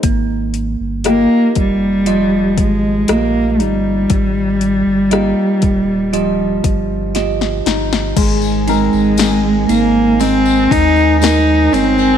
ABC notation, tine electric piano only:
X:1
M:4/4
L:1/8
Q:1/4=59
K:Ab
V:1 name="Tine electric piano"
B,2 [FGe]2 [FGe]2 [FGe]2 | G,2 [FGe]2 [FGe]2 [FGe]2 | A, E A, E A, E A, E |]